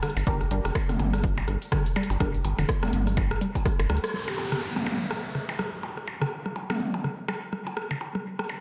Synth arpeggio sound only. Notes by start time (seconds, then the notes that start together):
0.03 D3
0.27 G3
0.51 G3
0.89 D3
1.14 G3
1.38 G3
1.72 D3
1.96 G3
2.21 G3
2.59 D3
2.83 G3
3.07 G3
3.41 G3
3.66 G4
3.90 G3
4.14 G3
4.52 D3
4.76 G3
5.01 G3
5.35 D3
5.59 G3
5.83 G3
6.22 D3
6.46 G3
6.70 G3
7.04 D3
7.28 G3
7.53 G3
7.91 D3
8.15 G3
8.39 G3